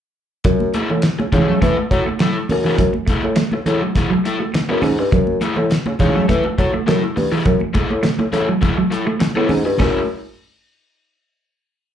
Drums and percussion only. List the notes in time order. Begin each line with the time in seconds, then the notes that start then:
0.44 kick, closed hi-hat, muted conga
0.60 muted conga, high conga
0.74 closed hi-hat, high conga
0.90 high conga
1.02 snare, clap, closed hi-hat, muted conga
1.20 muted conga, high conga
1.33 kick, closed hi-hat, low conga
1.62 kick, closed hi-hat, low conga
1.91 kick, closed hi-hat
2.20 snare, clap, closed hi-hat, high conga
2.49 open hi-hat, high conga, low conga
2.78 kick, closed hi-hat
2.94 high conga
3.07 kick, closed hi-hat, high conga
3.23 high conga
3.36 snare, clap, closed hi-hat, muted conga
3.52 high conga
3.66 closed hi-hat, low conga
3.95 kick, closed hi-hat, low conga
4.25 closed hi-hat
4.54 snare, clap, closed hi-hat, muted conga, high conga
4.82 open hi-hat, high conga, low conga
5.12 kick, closed hi-hat
5.27 high conga
5.41 closed hi-hat, high conga
5.56 high conga
5.70 snare, clap, closed hi-hat, muted conga
5.86 high conga
5.99 kick, closed hi-hat, low conga
6.29 kick, closed hi-hat, muted conga, low conga
6.44 muted conga
6.58 kick, closed hi-hat
6.88 snare, clap, closed hi-hat, high conga
7.04 muted conga
7.17 open hi-hat, high conga, low conga
7.45 kick, closed hi-hat
7.60 high conga
7.74 kick, closed hi-hat, high conga
7.90 high conga
8.03 snare, clap, closed hi-hat, muted conga
8.19 muted conga, high conga
8.33 closed hi-hat, low conga
8.62 kick, closed hi-hat, low conga
8.92 closed hi-hat
9.21 snare, clap, closed hi-hat, muted conga, high conga
9.35 muted conga
9.49 open hi-hat, high conga, low conga
9.78 kick, snare, splash, high conga